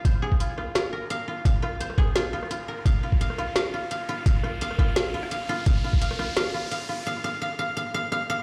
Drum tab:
HH |x---x---x---x---|x---x---x---x---|x---x---x---x---|x---x---x---x---|
SD |------r-o-------|--r--rr-o--r----|-----rr-o-------|--r--rr-o--r----|
BD |o--o------------|o-----o---------|o--o------------|o-----o---------|

HH |x---x---x---x---|----------------|
SD |-----rr-o-------|----------------|
BD |o--o------------|----------------|